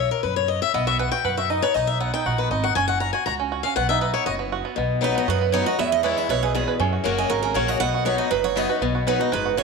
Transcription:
0.00 steel-string acoustic guitar C#5
0.11 steel-string acoustic guitar A#4
0.23 upright bass F#2, steel-string acoustic guitar B4
0.36 steel-string acoustic guitar C#5
0.48 steel-string acoustic guitar D#5
0.62 steel-string acoustic guitar E5
0.74 upright bass B1, five-string banjo B3, steel-string acoustic guitar D#5
0.87 five-string banjo F#4, steel-string acoustic guitar E5
0.99 five-string banjo B4, steel-string acoustic guitar F#5
1.12 five-string banjo F#4, steel-string acoustic guitar G5
1.24 upright bass F#2, five-string banjo B4, steel-string acoustic guitar F#5
1.37 five-string banjo F#4, steel-string acoustic guitar E5
1.50 five-string banjo D#4, steel-string acoustic guitar D#5
1.62 five-string banjo B4, steel-string acoustic guitar C#5
1.74 upright bass B1, five-string banjo D#4, steel-string acoustic guitar D#5
1.87 steel-string acoustic guitar E5
2.00 five-string banjo B3, steel-string acoustic guitar F#5
2.14 five-string banjo D#4, steel-string acoustic guitar G5
2.25 upright bass A#1, five-string banjo F#4, steel-string acoustic guitar F#5
2.38 five-string banjo B3, steel-string acoustic guitar B4
2.50 upright bass G#1, five-string banjo D#4, steel-string acoustic guitar D#5
2.64 five-string banjo F#4, steel-string acoustic guitar F#5
2.75 upright bass F#1, five-string banjo C#4, steel-string acoustic guitar G#5
2.88 five-string banjo F#4, steel-string acoustic guitar F#5
3.00 five-string banjo F#4, steel-string acoustic guitar A#5
3.13 five-string banjo F#4, steel-string acoustic guitar G#5
3.26 upright bass C#2, five-string banjo F#4, steel-string acoustic guitar A#5
3.40 five-string banjo C#4
3.52 five-string banjo F#4
3.63 five-string banjo C#4, steel-string acoustic guitar F5
3.76 upright bass B1, five-string banjo B3, steel-string acoustic guitar F#5
3.89 five-string banjo D#4, steel-string acoustic guitar E5
4.01 five-string banjo B4, steel-string acoustic guitar D#5
4.14 five-string banjo B3, steel-string acoustic guitar C#5
4.26 upright bass F#1, five-string banjo F#4, steel-string acoustic guitar D#5
4.39 five-string banjo B3
4.52 five-string banjo F#4
4.65 five-string banjo B3
4.76 upright bass B1, steel-string acoustic guitar B2, five-string banjo B3
5.01 steel-string acoustic guitar F#3 B3 D#4 F#4 B4, five-string banjo D#4
5.15 five-string banjo B3, steel-string acoustic guitar D#5
5.28 upright bass F#2, steel-string acoustic guitar F#2 B4, five-string banjo F#4
5.41 five-string banjo B3
5.52 steel-string acoustic guitar F#3 B3 D#4 F#4 C#5, five-string banjo D#4
5.66 steel-string acoustic guitar D#4 F#4 D#5, five-string banjo F#4
5.78 upright bass E2, steel-string acoustic guitar E2 E5, five-string banjo B3
5.92 steel-string acoustic guitar D#5
6.03 steel-string acoustic guitar E3 G#3 B3 E4 C#5, five-string banjo B4
6.17 five-string banjo E4, steel-string acoustic guitar D#5
6.29 upright bass B1, steel-string acoustic guitar B2 C#5, five-string banjo B4
6.43 five-string banjo G#4, steel-string acoustic guitar B4
6.55 steel-string acoustic guitar E2 G#4, five-string banjo B3
6.68 five-string banjo B4
6.79 upright bass F#2, steel-string acoustic guitar F#2, five-string banjo C#4
6.93 five-string banjo F#4
7.04 upright bass F#1, steel-string acoustic guitar F#3 A#3 C#4 F#4 A#4, five-string banjo F#4
7.18 five-string banjo C#4, steel-string acoustic guitar D#5
7.30 upright bass G#1, steel-string acoustic guitar C#3 A#4, five-string banjo F#4
7.43 five-string banjo C#4, steel-string acoustic guitar A#4
7.54 upright bass A#1, steel-string acoustic guitar F#3 A#3 C#4 F#4 C#5, five-string banjo F#4
7.68 five-string banjo F#4, steel-string acoustic guitar D#5
7.80 upright bass B1, steel-string acoustic guitar B2 F#5, five-string banjo B3
7.94 five-string banjo F#4
8.05 steel-string acoustic guitar F#3 B3 D#4 F#4 C#5, five-string banjo B4
8.18 five-string banjo D#4, steel-string acoustic guitar D#5
8.31 upright bass F#1, steel-string acoustic guitar F#2 B4, five-string banjo B4
8.44 five-string banjo F#4, steel-string acoustic guitar C#5
8.56 steel-string acoustic guitar F#3 B3 D#4 F#4 D#5, five-string banjo B3
8.69 steel-string acoustic guitar D#4 F#4, five-string banjo B4
8.81 upright bass B1, steel-string acoustic guitar B2, five-string banjo B3
8.95 five-string banjo F#4
9.07 steel-string acoustic guitar F#3 B3 D#4 F#4 B4, five-string banjo B4
9.19 five-string banjo D#4, steel-string acoustic guitar D#4 F#4 D#5
9.32 upright bass F#1, steel-string acoustic guitar G#2 B4, five-string banjo B4
9.45 five-string banjo F#4
9.57 steel-string acoustic guitar F#2 C#5, five-string banjo B3

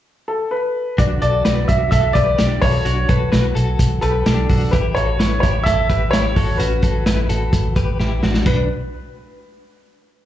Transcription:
0.28 upright piano A4
0.51 upright piano B4
0.98 fingered electric bass B1, clean electric guitar D4 F#4, upright piano D5, kick, closed hi-hat
1.22 fingered electric bass B1, clean electric guitar F#4 A4, upright piano D5, closed hi-hat
1.45 fingered electric bass B1, clean electric guitar F#4 B4, snare, closed hi-hat
1.68 fingered electric bass B1, clean electric guitar D4 F#4, upright piano E5, kick, closed hi-hat
1.91 fingered electric bass B1, clean electric guitar F#4 A4, upright piano E5, kick, snare, closed hi-hat
2.13 fingered electric bass B1, clean electric guitar G4 B4, upright piano D5, kick, closed hi-hat
2.38 fingered electric bass B1, clean electric guitar D4 G4, snare, closed hi-hat
2.62 fingered electric bass B1, clean electric guitar F#4 A4, upright piano C#5, kick, open hi-hat
2.85 fingered electric bass B1, clean electric guitar D4 F#4, closed hi-hat
3.09 fingered electric bass B1, clean electric guitar F#4 A4, upright piano B4, kick, closed hi-hat
3.32 fingered electric bass B1, clean electric guitar F#4 B4, snare, closed hi-hat
3.55 fingered electric bass B1, clean electric guitar F#4 A4, closed hi-hat
3.79 fingered electric bass B1, kick, closed hi-hat
4.01 fingered electric bass B1, clean electric guitar G4 B4, upright piano A4, closed hi-hat
4.26 fingered electric bass B1, clean electric guitar D4 G4, snare, closed hi-hat
4.49 fingered electric bass B1, clean electric guitar D4 F#4, kick, open hi-hat
4.71 fingered electric bass A1, clean electric guitar E4 G4, upright piano B4, kick, closed hi-hat
4.95 fingered electric bass A1, clean electric guitar F#4 A4, upright piano C#5, closed hi-hat
5.19 fingered electric bass A1, clean electric guitar E4 B4, snare, closed hi-hat
5.40 fingered electric bass A1, clean electric guitar E4 G4, upright piano C#5, kick, closed hi-hat
5.64 fingered electric bass A1, clean electric guitar E4 A4, upright piano E5, kick, snare, closed hi-hat
5.89 fingered electric bass A1, clean electric guitar G4 B4, kick, closed hi-hat
6.11 fingered electric bass A1, clean electric guitar E4 G4, upright piano C#5, snare, closed hi-hat
6.36 fingered electric bass A1, clean electric guitar F#4 A4, kick, open hi-hat
6.57 fingered electric bass A1, clean electric guitar C#4 F#4, upright piano B4, closed hi-hat
6.83 fingered electric bass A1, clean electric guitar F#4 A4, kick, closed hi-hat
7.06 fingered electric bass A1, clean electric guitar E4 B4, snare, closed hi-hat
7.29 fingered electric bass A1, clean electric guitar F#4 A4, closed hi-hat
7.53 fingered electric bass A1, kick, closed hi-hat
7.76 fingered electric bass A1, clean electric guitar G4 B4, kick, closed hi-hat
7.99 fingered electric bass A1, clean electric guitar E4 G4, snare
8.23 fingered electric bass A1, clean electric guitar D4 F#4, snare
8.34 snare
8.46 fingered electric bass B1, clean electric guitar D4, upright piano B4, kick, crash

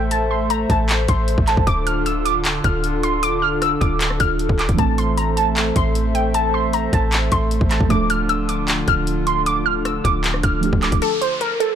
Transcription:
Already playing: 808-style bass A1, analog synth pad A3 A4 C5 E5, synth pluck G5
0.11 synth pluck A5, closed hi-hat
0.31 synth pluck C6
0.50 synth pluck A#5, closed hi-hat
0.70 808-style bass A1, synth pluck A5, kick, closed hi-hat
0.89 clap, closed hi-hat
1.08 808-style bass A1, synth pluck C6, kick, closed hi-hat
1.28 closed hi-hat
1.38 808-style bass A1, kick
1.48 synth pluck A5, clap, closed hi-hat
1.57 808-style bass A1, kick
1.67 808-style bass D1, analog synth pad D3 D4 F4 A4, synth pluck D6, kick, closed hi-hat
1.87 synth pluck F6, closed hi-hat
2.06 synth pluck E6, closed hi-hat
2.25 synth pluck D6, closed hi-hat
2.45 clap, closed hi-hat
2.64 808-style bass D1, synth pluck F6, kick, closed hi-hat
2.84 closed hi-hat
3.03 synth pluck C6, closed hi-hat
3.23 synth pluck D6, closed hi-hat
3.42 synth pluck F6
3.62 synth pluck E6, cross-stick, closed hi-hat
3.81 808-style bass D1, synth pluck D6, kick, closed hi-hat
4.01 clap, closed hi-hat
4.10 cross-stick
4.20 808-style bass D1, synth pluck F6, kick, closed hi-hat
4.39 closed hi-hat
4.49 808-style bass D1, kick
4.59 synth pluck D6, clap, closed hi-hat
4.69 808-style bass D1, kick, closed hi-hat
4.74 synth keys E3 A3
4.79 808-style bass A1, analog synth pad A3 C5 E5, synth keys C4, synth pluck A5, kick, closed hi-hat
4.83 synth keys A4
4.98 synth pluck C6, closed hi-hat
5.17 synth pluck A#5, closed hi-hat
5.37 synth pluck A5, closed hi-hat
5.56 clap, closed hi-hat
5.76 808-style bass A1, synth pluck C6, kick, closed hi-hat
5.95 closed hi-hat
6.15 synth pluck G5, closed hi-hat
6.34 synth pluck A5, closed hi-hat
6.54 synth pluck C6
6.73 synth pluck A#5, closed hi-hat
6.93 808-style bass A1, synth pluck A5, kick, closed hi-hat
7.12 clap, closed hi-hat
7.32 808-style bass A1, synth pluck C6, kick, closed hi-hat
7.51 closed hi-hat
7.61 808-style bass A1, kick
7.71 synth pluck A5, clap, closed hi-hat
7.81 808-style bass A1, kick
7.86 synth keys F3 A3
7.90 808-style bass D1, analog synth pad D3 D4 F4, synth keys D4, synth pluck D6, kick, closed hi-hat
7.95 synth keys A4
8.10 synth pluck F6, closed hi-hat
8.29 synth pluck E6, closed hi-hat
8.49 synth pluck D6, closed hi-hat
8.68 clap, closed hi-hat
8.88 808-style bass D1, synth pluck F6, kick, closed hi-hat
9.07 closed hi-hat
9.27 synth pluck C6, closed hi-hat
9.46 synth pluck D6, closed hi-hat
9.66 synth pluck F6
9.85 synth pluck E6, cross-stick, closed hi-hat
10.04 808-style bass D1, synth pluck D6, kick, closed hi-hat
10.24 clap, closed hi-hat
10.34 cross-stick
10.43 808-style bass D1, synth pluck F6, kick, closed hi-hat
10.61 synth keys F3 A3 D4, closed hi-hat
10.65 synth keys G4
10.73 808-style bass D1, kick
10.83 synth pluck D6, clap, closed hi-hat
10.92 808-style bass D1, kick, closed hi-hat
11.02 synth pluck A4, closed hi-hat, downlifter
11.21 synth pluck C5, closed hi-hat
11.41 synth pluck A#4, closed hi-hat
11.60 synth pluck A4, closed hi-hat

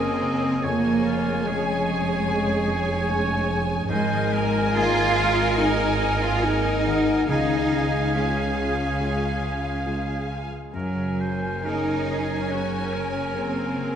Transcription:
Already playing: double bass section F#1, harp F#2 C#3 G#4 A#4 C#6, grand piano C#3 A#3 C#4 G#4, french horn section A#3, cello section C4, viola section A#4, clarinet A#4, violin section C#5 G#5, oboe D#5, flute G#5
0.01 harp A#3
0.21 harp C#3
0.42 harp A#3
0.61 double bass section F1, grand piano F2, harp F2, cello section A#3, french horn section A#3, viola section G#4, clarinet C#5, oboe C#5, violin section C#5 G#5, flute G#5
0.84 harp F3
1.05 harp G#3, oboe F4
1.26 harp C#4
1.47 cello section G#3, grand piano G#3 C#4 G#4, french horn section G#3, harp G#4, oboe G#4
1.67 harp C#4
1.88 harp C#5
2.08 harp G#5
2.28 grand piano G#3 C#4 G#4, harp C#5
2.68 harp C#5
2.88 harp G#4
3.08 grand piano G#3 C#4 G#4, harp C#4, oboe C#5
3.30 harp G#3
3.50 harp F3
3.70 harp G#3
3.89 double bass section G#1, grand piano G#2, harp G#2, french horn section G#3, cello section G#3, viola section A#4, clarinet A#4, oboe C5, violin section D#5 G#5, flute G#5
4.11 harp D#3
4.33 harp A#3, oboe A#4
4.54 harp D#4
4.74 grand piano A#3 D#4 G#4, cello section F4, french horn section F4, harp G#4, oboe G#4
5.18 oboe A#4
5.38 harp G#5
5.58 grand piano A#3 D#4 G#4, cello section D#4, french horn section D#4, clarinet A#4, flute G#5
6.22 french horn section F4, cello section F4, harp A#4
6.42 grand piano A#3 D#4 G#4, cello section D#4, french horn section D#4, harp G#4, clarinet A#4, flute G#5
6.63 harp A#3
6.85 harp D#3, flute F#5
7.07 harp A#3
7.28 double bass section C#2, grand piano C#2, harp C#3, timpani C#3, cello section D#4, french horn section D#4, viola section G#4, oboe G#4, clarinet G#4, violin section F5 G#5, flute F5
7.71 harp G#3
8.13 grand piano G#3 F4 G#4, cello section C#4, french horn section C#4, harp G#4, clarinet G#4, flute F5
8.36 harp F4
8.79 harp G#5
9.00 grand piano G#3 F4 G#4, harp F5
9.22 harp G#5
9.65 harp G#4
9.86 grand piano G#3 F4 G#4, harp F4
10.07 harp G#3
10.51 harp G#3
10.72 double bass section F#1, harp F#2, grand piano F#2, french horn section F#3, cello section F#3, viola section A#4, clarinet A#4, oboe A#4, violin section C#5 G#5, flute G#5
10.96 harp C#3
11.20 harp A#3, oboe C5
11.65 grand piano A#3 C#4 G#4, french horn section D#4, cello section D#4, harp G#4, oboe A#4
11.87 harp A#4
12.10 oboe G#4
12.30 harp G#5
12.50 grand piano A#3 C#4 G#4, cello section C#4, french horn section C#4, oboe F#4, clarinet A#4, flute G#5
12.72 harp G#5
12.94 oboe A#4
13.14 harp A#4
13.34 grand piano C#3 A#3 G#4, french horn section A#3, cello section C4, harp G#4
13.55 harp A#3
13.76 harp C#3

